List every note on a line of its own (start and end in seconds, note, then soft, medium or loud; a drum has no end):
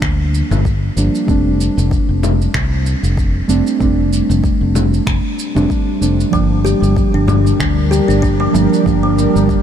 0.00 0.41 D2 medium
0.00 0.96 F3 medium
0.00 0.97 G3 medium
0.00 0.97 A#3 medium
0.00 0.98 D4 medium
0.00 finger snap medium
0.00 kick loud
0.00 shaker soft
0.35 shaker medium
0.51 0.88 G1 medium
0.51 low conga medium
0.51 shaker soft
0.65 kick medium
0.65 shaker soft
0.96 1.08 G1 medium
0.96 1.24 F3 medium
0.96 1.25 G3 medium
0.96 1.25 A#3 medium
0.96 1.25 D4 medium
0.96 shaker medium
1.15 shaker soft
1.26 1.67 F1 medium
1.26 3.45 G3 medium
1.26 3.45 A3 medium
1.26 3.46 C4 medium
1.26 3.47 D4 medium
1.26 kick loud
1.26 shaker soft
1.61 shaker medium
1.77 1.96 F1 medium
1.77 shaker soft
1.91 kick loud
1.91 shaker soft
2.09 2.46 F1 medium
2.23 low conga medium
2.23 shaker medium
2.42 shaker soft
2.54 2.93 C2 medium
2.54 finger snap medium
2.54 kick loud
2.54 shaker soft
2.86 shaker medium
3.03 3.41 F1 medium
3.03 shaker soft
3.17 kick loud
3.17 shaker soft
3.48 3.60 F1 medium
3.48 3.77 G3 medium
3.48 3.77 A3 medium
3.48 3.77 C4 medium
3.48 3.78 D4 medium
3.48 shaker medium
3.67 shaker soft
3.79 4.20 F1 medium
3.79 5.52 G3 medium
3.79 5.52 A3 medium
3.79 5.53 C4 medium
3.79 kick loud
3.79 shaker soft
3.83 5.54 D4 medium
4.13 shaker medium
4.29 4.48 F1 medium
4.29 shaker soft
4.44 kick loud
4.44 shaker soft
4.61 4.99 F1 medium
4.75 low conga medium
4.75 shaker medium
4.94 shaker soft
5.07 5.18 F1 medium
5.07 finger snap medium
5.07 kick loud
5.07 shaker soft
5.39 shaker medium
5.55 5.65 F1 medium
5.55 5.98 G3 medium
5.55 5.98 A3 medium
5.55 5.98 C4 medium
5.55 5.98 D4 medium
5.55 low conga medium
5.55 shaker soft
5.70 kick loud
5.70 shaker soft
6.00 6.23 F1 medium
6.00 6.29 G3 medium
6.00 6.29 A3 medium
6.00 6.30 C4 medium
6.00 6.30 D4 medium
6.00 shaker medium
6.20 shaker soft
6.31 6.72 G1 medium
6.31 8.50 F3 medium
6.31 8.50 G3 medium
6.31 6.50 G3 medium
6.31 9.62 G3 medium
6.31 8.51 A#3 medium
6.31 8.52 D4 medium
6.31 kick medium
6.31 shaker soft
6.57 9.62 D4 medium
6.57 9.62 G4 medium
6.65 7.12 G4 medium
6.65 darbuka tek soft
6.65 shaker medium
6.82 7.01 G1 medium
6.82 shaker soft
6.96 kick loud
6.96 shaker soft
7.14 7.51 G1 medium
7.14 7.27 D4 medium
7.26 7.90 G3 medium
7.26 9.62 A#4 medium
7.26 darbuka dum medium
7.26 low conga medium
7.26 shaker medium
7.45 darbuka ka soft
7.45 shaker soft
7.60 7.99 D2 medium
7.60 finger snap medium
7.60 kick loud
7.60 shaker soft
7.91 8.07 G4 medium
7.91 darbuka tek medium
7.91 shaker medium
8.08 8.46 G1 medium
8.08 8.21 D4 medium
8.08 shaker soft
8.22 8.39 D4 medium
8.22 kick loud
8.22 darbuka ka soft
8.22 shaker soft
8.40 8.53 G3 medium
8.40 darbuka tek medium
8.53 8.66 G1 medium
8.53 8.82 F3 medium
8.53 8.82 G3 medium
8.53 8.82 A#3 medium
8.53 8.83 D4 medium
8.53 darbuka ka soft
8.53 darbuka tek medium
8.53 shaker medium
8.74 shaker soft
8.83 9.25 G1 medium
8.83 9.62 F3 medium
8.83 9.62 G3 medium
8.83 9.62 A#3 medium
8.83 9.62 D4 medium
8.83 kick loud
8.83 shaker soft
9.03 9.62 G3 medium
9.18 darbuka tek soft
9.18 shaker medium
9.35 9.54 G1 medium
9.35 shaker soft
9.49 kick medium
9.49 shaker soft